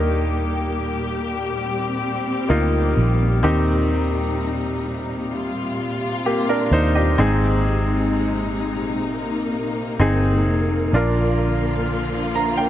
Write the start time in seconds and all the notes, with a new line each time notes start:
Already playing: D#2 A#2 D#3 G3 A#3 D4 D#4 G4 A#4
1.55 C4
2.49 D2 A#3 D#4 F4
2.97 A#1
3.42 D#2 C3 D#3 C4 D#4 G4
5.31 F4
6.26 A#3 G4
6.49 D4 A#4
6.71 D#2 D#4 C5
6.95 G4 D#5
7.18 G#1 G#2 G#3 C4 D#4 G#4
9.06 A#3
9.99 G1 C4 D#4 G#4
10.46 F1
10.92 A#1 A#2 D3 F3 D4 F4
10.96 A#4
12.35 A#5
12.57 G5